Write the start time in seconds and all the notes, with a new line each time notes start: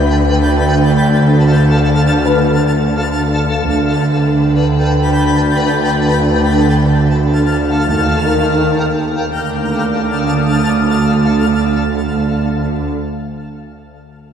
Already playing: D2 D3 B4 E5 G5 A5
0.85 A4 F5
2.25 B4
3.66 D2 D3 B4 G5 A5
6.48 A4 F5
7.90 D#2 D#3 A#4 G5
8.25 A#4
9.31 D2 D3 A4 F5 A5 D6
10.00 D#6